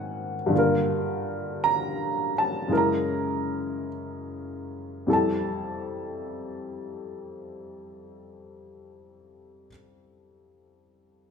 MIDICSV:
0, 0, Header, 1, 2, 480
1, 0, Start_track
1, 0, Key_signature, -1, "major"
1, 0, Tempo, 1063830
1, 233, Time_signature, 4, 2, 24, 8
1, 717, Tempo, 1138520
1, 1677, Tempo, 1242236
1, 4553, End_track
2, 0, Start_track
2, 0, Title_t, "Upright piano"
2, 0, Program_c, 0, 0
2, 0, Control_c, 0, 64, 127
2, 0, Note_on_c, 0, 44, 46
2, 0, Note_on_c, 0, 51, 50
2, 0, Note_on_c, 0, 60, 42
2, 0, Note_on_c, 0, 66, 50
2, 0, Note_on_c, 0, 70, 54
2, 0, Note_on_c, 0, 78, 55
2, 0, Note_on_c, 0, 80, 66
2, 151, Note_off_c, 0, 78, 0
2, 209, Note_on_c, 0, 43, 50
2, 226, Note_on_c, 0, 50, 42
2, 236, Note_off_c, 0, 44, 0
2, 236, Note_off_c, 0, 51, 0
2, 237, Note_off_c, 0, 66, 0
2, 238, Note_off_c, 0, 60, 0
2, 238, Note_off_c, 0, 70, 0
2, 238, Note_on_c, 0, 58, 44
2, 239, Control_c, 0, 64, 0
2, 240, Note_off_c, 0, 80, 0
2, 249, Note_on_c, 0, 65, 51
2, 263, Note_on_c, 0, 70, 57
2, 327, Control_c, 0, 64, 127
2, 737, Note_on_c, 0, 82, 81
2, 1020, Note_off_c, 0, 82, 0
2, 1052, Note_on_c, 0, 81, 72
2, 1176, Note_off_c, 0, 43, 0
2, 1176, Note_on_c, 0, 42, 50
2, 1182, Note_on_c, 0, 49, 42
2, 1183, Note_on_c, 0, 56, 42
2, 1184, Note_off_c, 0, 50, 0
2, 1189, Note_off_c, 0, 58, 0
2, 1190, Note_off_c, 0, 70, 0
2, 1190, Note_on_c, 0, 64, 44
2, 1192, Control_c, 0, 64, 0
2, 1195, Note_off_c, 0, 65, 0
2, 1197, Note_on_c, 0, 70, 55
2, 1204, Note_off_c, 0, 81, 0
2, 1217, Note_on_c, 0, 82, 65
2, 1272, Control_c, 0, 64, 127
2, 1675, Note_off_c, 0, 82, 0
2, 2141, Note_off_c, 0, 64, 0
2, 2141, Note_on_c, 0, 41, 49
2, 2143, Note_off_c, 0, 42, 0
2, 2143, Note_on_c, 0, 48, 46
2, 2146, Note_off_c, 0, 49, 0
2, 2147, Note_off_c, 0, 56, 0
2, 2147, Note_on_c, 0, 55, 45
2, 2147, Note_on_c, 0, 64, 45
2, 2152, Note_on_c, 0, 69, 55
2, 2153, Note_off_c, 0, 70, 0
2, 2153, Control_c, 0, 64, 0
2, 2166, Note_on_c, 0, 81, 57
2, 2220, Control_c, 0, 64, 127
2, 3916, Note_off_c, 0, 41, 0
2, 3919, Note_off_c, 0, 48, 0
2, 3922, Note_off_c, 0, 55, 0
2, 3923, Note_off_c, 0, 64, 0
2, 3926, Note_off_c, 0, 81, 0
2, 3928, Note_off_c, 0, 69, 0
2, 4553, End_track
0, 0, End_of_file